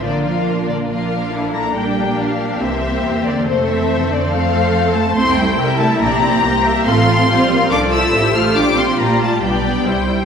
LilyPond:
<<
  \new Staff \with { instrumentName = "Violin section" } { \time 4/4 \key f \major \tempo 4 = 141 d''8 f''4 d''8 f''4. bes''8 | g''4 f''4 e''4. d''8 | c''8 e''4 d''8 f''4. a''8 | c'''8 g''4 a''8 bes''2 |
c'''2 d'''8 e'''4 f'''8 | d'''8 c'''8 bes''8 a''8 g''2 | }
  \new Staff \with { instrumentName = "Violin section" } { \time 4/4 \key f \major << { bes'2 bes'4 a'4 | g'2 c''2 | c''2 c''2 | c''4 e''4 d''4 c''8 e''8 |
f''4 f''4 d''4 c''4~ | c''4 d''4 d''4 c''4 | } \\ { f'2 f'4 e'4 | d'2 g'2 | a'2 a'2 | c''4 bes'8 a'8 g'2 |
a'4 c''8 bes'8 a'2 | g'4 g'2 c''4 | } >> }
  \new Staff \with { instrumentName = "Viola section" } { \time 4/4 \key f \major << { d'2 d'2 | d'2 c'2 | c'2 c'2 | e'2. g'4 |
f'4 f'2 g'4 | f'2 d'4 e'8 e'8 | } \\ { bes2 bes2 | bes2 bes2 | a2 a2 | a4 g4 d'8 c'8 bes4 |
a4 g4 f4 c'8 a8 | g4 g4 b8 b8 g4 | } >> }
  \new Staff \with { instrumentName = "Cello section" } { \clef bass \time 4/4 \key f \major d8 f4 d8 f4. bes8 | g4 f4 e4. d8 | c8 e4 d8 f4. a8 | c'8 g4 a8 bes2 |
c'2 d'8 e'4 f'8 | d'8 c'8 bes8 a8 g2 | }
  \new Staff \with { instrumentName = "Double bass section" } { \clef bass \time 4/4 \key f \major bes,,1 | bes,,2 c,4 e,4 | f,1 | c,4 c4 bes,,4 c,4 |
a,,4 bes,,4 c,4 a,,4 | bes,,4 bes,4 b,,4 c,4 | }
>>